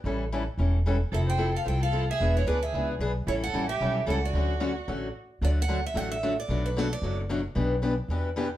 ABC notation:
X:1
M:4/4
L:1/8
Q:"Swing" 1/4=224
K:D
V:1 name="Steel-string acoustic guitar"
z8 | e g2 =f g f2 e- | e c B e2 z3 | c f2 e3 f d- |
d6 z2 | d f2 e f e2 d- | d B A d2 z3 | z8 |]
V:2 name="Violin"
z8 | A =c2 A c A2 ^G- | ^G E D G2 z3 | E A2 G3 A F- |
F6 z2 | z8 | z8 | z8 |]
V:3 name="Steel-string acoustic guitar"
[E,G,CEA] z [E,G,CEA] z [E,G,CEA] z [E,G,CEA] z | [=F,=CEA] z [F,CEA] z [F,CEA] z [F,CEA] z | [E,B,D^G] z [E,B,DG] z [E,B,DG] z [E,B,DG] z | [E,G,CEA] z [E,G,CEA] z [E,G,CEA] z [E,G,CEA] z |
[D,F,A,CF] z [D,F,A,CF] z [D,F,A,CF] z3 | [D,F,A,DF] z [D,F,A,DF] z [D,F,A,DF] z [D,F,A,DF] z | [B,,F,A,DF] z [B,,F,A,DF] z [B,,F,A,DF] z [B,,F,A,DF] z | [B,,E,B,DG] z [B,,E,B,DG] z [B,,E,B,DG] z [B,,E,B,DG] z |]
V:4 name="Upright bass" clef=bass
A,,,4 E,,,4 | =F,,,4 =C,,4 | E,,,2 D,,2 C,,2 B,,,2 | A,,,2 A,,,2 B,,,2 C,,2 |
D,,4 A,,,2 z2 | D,,4 A,,,4 | B,,,4 F,,,4 | B,,,4 E,,4 |]